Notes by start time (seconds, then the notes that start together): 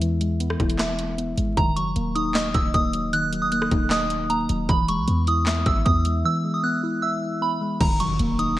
Already playing: E2 G#3 B3 E4 E5
0.00 E3, closed hi-hat
0.21 G#3, closed hi-hat
0.40 B3, closed hi-hat
0.50 cross-stick
0.60 E1 E4, kick, cross-stick, closed hi-hat
0.70 closed hi-hat
0.79 E5, snare, clap, closed hi-hat
0.99 closed hi-hat
1.18 B3, closed hi-hat
1.38 G#1 G#3, closed hi-hat
1.57 D#1 D#3 A#5, kick, closed hi-hat
1.76 F#1 F#3 C#6, closed hi-hat
1.96 D#1 A#3, closed hi-hat
2.15 D#4 D#6, closed hi-hat
2.35 D#5, snare, clap, closed hi-hat
2.54 D#1 E6, kick, closed hi-hat
2.74 D#1 A#3 D#6, kick, closed hi-hat
2.93 F#3, closed hi-hat
3.13 D#3 F#6, closed hi-hat
3.33 F#3, closed hi-hat
3.42 D#6
3.52 A#3 F#6, closed hi-hat
3.62 cross-stick
3.71 D#1 D#4, kick, closed hi-hat
3.90 D#5 D#6, snare, clap, closed hi-hat
4.10 closed hi-hat
4.30 A#3 A#5, closed hi-hat
4.49 D#1 F#3, closed hi-hat
4.69 E1 E3 B5, kick, closed hi-hat
4.88 G#3 C#6, closed hi-hat
4.98 B1
5.08 E2 B3, closed hi-hat
5.27 E4 D#6, closed hi-hat
5.46 E5, snare, clap, closed hi-hat
5.66 G#1 E6, kick, closed hi-hat
5.85 E2 B3 D#6, kick, closed hi-hat
6.05 G#3, closed hi-hat
6.25 E3 E6
6.44 G#3
6.54 D#6
6.64 B3 F#6
6.83 E4
7.02 E5 E6
7.41 B3 B5
7.61 G#3
7.81 D#1 D#3 A#5, kick, closed hi-hat, crash, impact
8.00 F#1 F#3 C#6, closed hi-hat
8.19 D#1 A#3, closed hi-hat
8.39 D#4 D#6, closed hi-hat